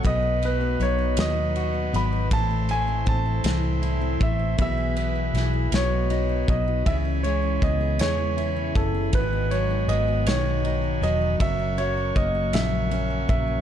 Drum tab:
RD |xxxxxx|xxxxxx|xxxxxx|xxxxxx|
SD |---o--|---o--|--oo--|---o--|
BD |o-----|o-o--o|o----o|o-o--o|

RD |xxxxxx|xxxxxx|
SD |---o--|---o--|
BD |o-----|o-o--o|